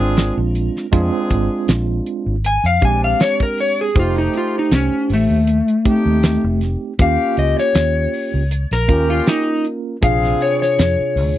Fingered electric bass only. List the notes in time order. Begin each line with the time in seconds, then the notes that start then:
0.00 G#1
0.37 A#1
0.93 F2
1.31 G#1
1.69 A#1
2.26 G#1
2.64 F2
2.82 A#1
3.96 F1
4.72 C2
5.10 A1
5.30 D#2
6.06 D#2
6.44 F1
7.00 D#2
7.38 C#2
7.75 D#2
8.34 C#2
8.71 A#1
8.89 D#2
10.03 A#1
10.79 F2
10.99 muted fingered electric bass stroke
11.16 D2